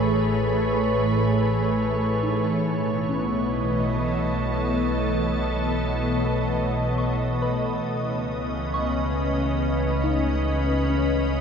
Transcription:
0, 0, Header, 1, 5, 480
1, 0, Start_track
1, 0, Tempo, 858369
1, 46, Time_signature, 3, 2, 24, 8
1, 2446, Tempo, 868307
1, 6334, End_track
2, 0, Start_track
2, 0, Title_t, "Synth bell"
2, 0, Program_c, 0, 98
2, 0, Control_c, 0, 64, 127
2, 1247, Note_on_c, 0, 63, 57
2, 1494, Control_c, 0, 64, 0
2, 1575, Control_c, 0, 64, 127
2, 1727, Note_on_c, 0, 61, 62
2, 1821, Note_off_c, 0, 63, 0
2, 2831, Note_off_c, 0, 61, 0
2, 3886, Note_on_c, 0, 85, 63
2, 4129, Note_on_c, 0, 83, 60
2, 4130, Note_on_c, 0, 71, 45
2, 4346, Note_off_c, 0, 85, 0
2, 4378, Control_c, 0, 64, 0
2, 4479, Control_c, 0, 64, 127
2, 4858, Note_on_c, 0, 85, 65
2, 4951, Note_off_c, 0, 83, 0
2, 5241, Note_off_c, 0, 71, 0
2, 5577, Note_on_c, 0, 63, 51
2, 5958, Note_off_c, 0, 85, 0
2, 6052, Note_on_c, 0, 61, 58
2, 6146, Note_off_c, 0, 63, 0
2, 6334, Note_off_c, 0, 61, 0
2, 6334, End_track
3, 0, Start_track
3, 0, Title_t, "Ambient pad"
3, 0, Program_c, 1, 92
3, 0, Note_on_c, 1, 45, 60
3, 0, Note_on_c, 1, 57, 57
3, 0, Note_on_c, 1, 68, 66
3, 0, Note_on_c, 1, 71, 90
3, 0, Note_on_c, 1, 73, 65
3, 1483, Note_on_c, 1, 47, 61
3, 1484, Note_off_c, 1, 45, 0
3, 1486, Note_off_c, 1, 57, 0
3, 1486, Note_off_c, 1, 68, 0
3, 1600, Note_on_c, 1, 59, 67
3, 1798, Note_on_c, 1, 75, 64
3, 1989, Note_on_c, 1, 69, 78
3, 2154, Note_off_c, 1, 71, 0
3, 4367, Note_on_c, 1, 49, 68
3, 4369, Note_off_c, 1, 47, 0
3, 4371, Note_off_c, 1, 69, 0
3, 4523, Note_on_c, 1, 61, 83
3, 4595, Note_on_c, 1, 71, 75
3, 5025, Note_off_c, 1, 73, 0
3, 5525, Note_off_c, 1, 59, 0
3, 6334, Note_off_c, 1, 49, 0
3, 6334, Note_off_c, 1, 61, 0
3, 6334, Note_off_c, 1, 71, 0
3, 6334, Note_off_c, 1, 75, 0
3, 6334, End_track
4, 0, Start_track
4, 0, Title_t, "Synth drone"
4, 0, Program_c, 2, 95
4, 0, Note_on_c, 2, 52, 72
4, 0, Note_on_c, 2, 57, 71
4, 6334, Note_off_c, 2, 52, 0
4, 6334, Note_off_c, 2, 57, 0
4, 6334, End_track
5, 0, Start_track
5, 0, Title_t, "Sub bass"
5, 0, Program_c, 3, 38
5, 0, Note_on_c, 3, 33, 80
5, 1463, Note_off_c, 3, 33, 0
5, 1485, Note_on_c, 3, 35, 87
5, 4346, Note_off_c, 3, 35, 0
5, 4372, Note_on_c, 3, 37, 77
5, 6334, Note_off_c, 3, 37, 0
5, 6334, End_track
0, 0, End_of_file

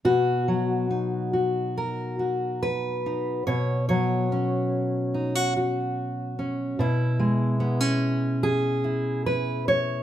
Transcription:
0, 0, Header, 1, 2, 480
1, 0, Start_track
1, 0, Key_signature, 5, "major"
1, 0, Tempo, 852273
1, 28, Time_signature, 4, 2, 24, 8
1, 2428, Tempo, 825309
1, 5754, End_track
2, 0, Start_track
2, 0, Title_t, "Steel-string acoustic guitar"
2, 0, Program_c, 0, 25
2, 26, Note_on_c, 0, 47, 57
2, 28, Note_on_c, 0, 66, 77
2, 271, Note_on_c, 0, 54, 52
2, 510, Note_on_c, 0, 63, 37
2, 744, Note_off_c, 0, 66, 0
2, 751, Note_on_c, 0, 66, 41
2, 1000, Note_on_c, 0, 70, 67
2, 1228, Note_off_c, 0, 66, 0
2, 1235, Note_on_c, 0, 66, 36
2, 1476, Note_off_c, 0, 70, 0
2, 1479, Note_on_c, 0, 71, 79
2, 1717, Note_off_c, 0, 63, 0
2, 1723, Note_on_c, 0, 63, 38
2, 1925, Note_off_c, 0, 47, 0
2, 1926, Note_off_c, 0, 66, 0
2, 1929, Note_off_c, 0, 63, 0
2, 1951, Note_off_c, 0, 71, 0
2, 1953, Note_on_c, 0, 73, 83
2, 1957, Note_on_c, 0, 47, 62
2, 2183, Note_off_c, 0, 73, 0
2, 2188, Note_off_c, 0, 54, 0
2, 2189, Note_on_c, 0, 73, 79
2, 2195, Note_on_c, 0, 54, 54
2, 2433, Note_on_c, 0, 61, 42
2, 2912, Note_on_c, 0, 63, 41
2, 3034, Note_off_c, 0, 63, 0
2, 3034, Note_on_c, 0, 66, 37
2, 3151, Note_off_c, 0, 66, 0
2, 3158, Note_on_c, 0, 66, 42
2, 3634, Note_off_c, 0, 61, 0
2, 3635, Note_off_c, 0, 73, 0
2, 3636, Note_on_c, 0, 61, 42
2, 3847, Note_off_c, 0, 47, 0
2, 3848, Note_off_c, 0, 66, 0
2, 3870, Note_on_c, 0, 47, 67
2, 3877, Note_off_c, 0, 54, 0
2, 3878, Note_on_c, 0, 64, 69
2, 3888, Note_off_c, 0, 61, 0
2, 4105, Note_on_c, 0, 56, 58
2, 4341, Note_on_c, 0, 59, 45
2, 4460, Note_off_c, 0, 59, 0
2, 4460, Note_on_c, 0, 61, 39
2, 4824, Note_on_c, 0, 68, 89
2, 5056, Note_off_c, 0, 64, 0
2, 5063, Note_on_c, 0, 64, 42
2, 5304, Note_off_c, 0, 68, 0
2, 5309, Note_on_c, 0, 71, 87
2, 5548, Note_off_c, 0, 71, 0
2, 5551, Note_on_c, 0, 73, 91
2, 5754, Note_off_c, 0, 47, 0
2, 5754, Note_off_c, 0, 56, 0
2, 5754, Note_off_c, 0, 61, 0
2, 5754, Note_off_c, 0, 64, 0
2, 5754, Note_off_c, 0, 73, 0
2, 5754, End_track
0, 0, End_of_file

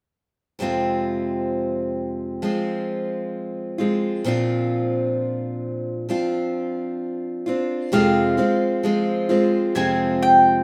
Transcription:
0, 0, Header, 1, 3, 480
1, 0, Start_track
1, 0, Tempo, 916031
1, 313, Time_signature, 4, 2, 24, 8
1, 5573, End_track
2, 0, Start_track
2, 0, Title_t, "Mandolin"
2, 0, Program_c, 0, 25
2, 4156, Note_on_c, 0, 77, 68
2, 5111, Note_on_c, 0, 80, 72
2, 5143, Note_off_c, 0, 77, 0
2, 5356, Note_off_c, 0, 80, 0
2, 5358, Note_on_c, 0, 79, 81
2, 5573, Note_off_c, 0, 79, 0
2, 5573, End_track
3, 0, Start_track
3, 0, Title_t, "Steel-string acoustic guitar"
3, 0, Program_c, 1, 25
3, 308, Note_on_c, 1, 41, 59
3, 313, Note_on_c, 1, 48, 63
3, 316, Note_on_c, 1, 53, 64
3, 319, Note_on_c, 1, 56, 64
3, 324, Note_on_c, 1, 60, 68
3, 327, Note_on_c, 1, 65, 65
3, 1266, Note_off_c, 1, 53, 0
3, 1266, Note_off_c, 1, 56, 0
3, 1269, Note_on_c, 1, 53, 51
3, 1270, Note_off_c, 1, 41, 0
3, 1272, Note_off_c, 1, 48, 0
3, 1272, Note_on_c, 1, 56, 49
3, 1274, Note_off_c, 1, 60, 0
3, 1276, Note_on_c, 1, 60, 51
3, 1279, Note_off_c, 1, 65, 0
3, 1281, Note_on_c, 1, 65, 53
3, 1980, Note_off_c, 1, 65, 0
3, 1982, Note_on_c, 1, 65, 46
3, 1986, Note_off_c, 1, 56, 0
3, 1986, Note_off_c, 1, 60, 0
3, 1988, Note_on_c, 1, 60, 36
3, 1992, Note_on_c, 1, 56, 40
3, 1994, Note_off_c, 1, 53, 0
3, 1997, Note_on_c, 1, 53, 43
3, 2223, Note_off_c, 1, 53, 0
3, 2224, Note_on_c, 1, 46, 73
3, 2227, Note_off_c, 1, 60, 0
3, 2227, Note_off_c, 1, 65, 0
3, 2230, Note_on_c, 1, 53, 68
3, 2232, Note_off_c, 1, 56, 0
3, 2234, Note_on_c, 1, 60, 60
3, 2238, Note_on_c, 1, 62, 73
3, 2243, Note_on_c, 1, 65, 72
3, 3183, Note_off_c, 1, 53, 0
3, 3188, Note_off_c, 1, 46, 0
3, 3188, Note_off_c, 1, 60, 0
3, 3189, Note_on_c, 1, 53, 50
3, 3191, Note_off_c, 1, 62, 0
3, 3193, Note_off_c, 1, 65, 0
3, 3194, Note_on_c, 1, 60, 58
3, 3197, Note_on_c, 1, 62, 56
3, 3199, Note_on_c, 1, 65, 60
3, 3903, Note_off_c, 1, 65, 0
3, 3909, Note_on_c, 1, 65, 43
3, 3910, Note_off_c, 1, 53, 0
3, 3912, Note_off_c, 1, 62, 0
3, 3913, Note_off_c, 1, 60, 0
3, 3918, Note_on_c, 1, 62, 44
3, 3923, Note_on_c, 1, 60, 38
3, 4149, Note_off_c, 1, 60, 0
3, 4149, Note_on_c, 1, 41, 62
3, 4150, Note_off_c, 1, 65, 0
3, 4153, Note_off_c, 1, 62, 0
3, 4153, Note_on_c, 1, 48, 72
3, 4153, Note_on_c, 1, 53, 75
3, 4155, Note_on_c, 1, 56, 71
3, 4155, Note_on_c, 1, 60, 67
3, 4158, Note_on_c, 1, 65, 75
3, 4380, Note_off_c, 1, 65, 0
3, 4384, Note_off_c, 1, 60, 0
3, 4387, Note_on_c, 1, 65, 38
3, 4390, Note_off_c, 1, 41, 0
3, 4390, Note_off_c, 1, 56, 0
3, 4391, Note_on_c, 1, 60, 44
3, 4392, Note_off_c, 1, 48, 0
3, 4392, Note_off_c, 1, 53, 0
3, 4396, Note_on_c, 1, 56, 41
3, 4400, Note_on_c, 1, 53, 34
3, 4623, Note_off_c, 1, 53, 0
3, 4628, Note_off_c, 1, 56, 0
3, 4629, Note_off_c, 1, 65, 0
3, 4629, Note_on_c, 1, 53, 56
3, 4631, Note_off_c, 1, 60, 0
3, 4635, Note_on_c, 1, 56, 54
3, 4637, Note_on_c, 1, 60, 52
3, 4641, Note_on_c, 1, 65, 57
3, 4862, Note_off_c, 1, 65, 0
3, 4864, Note_off_c, 1, 60, 0
3, 4868, Note_off_c, 1, 56, 0
3, 4868, Note_on_c, 1, 65, 48
3, 4870, Note_off_c, 1, 53, 0
3, 4871, Note_on_c, 1, 60, 43
3, 4875, Note_on_c, 1, 56, 44
3, 4880, Note_on_c, 1, 53, 40
3, 5108, Note_off_c, 1, 53, 0
3, 5108, Note_on_c, 1, 41, 65
3, 5109, Note_off_c, 1, 56, 0
3, 5110, Note_off_c, 1, 65, 0
3, 5111, Note_off_c, 1, 60, 0
3, 5111, Note_on_c, 1, 48, 64
3, 5114, Note_on_c, 1, 53, 67
3, 5115, Note_on_c, 1, 56, 72
3, 5117, Note_on_c, 1, 60, 66
3, 5118, Note_on_c, 1, 65, 71
3, 5573, Note_off_c, 1, 41, 0
3, 5573, Note_off_c, 1, 48, 0
3, 5573, Note_off_c, 1, 53, 0
3, 5573, Note_off_c, 1, 56, 0
3, 5573, Note_off_c, 1, 60, 0
3, 5573, Note_off_c, 1, 65, 0
3, 5573, End_track
0, 0, End_of_file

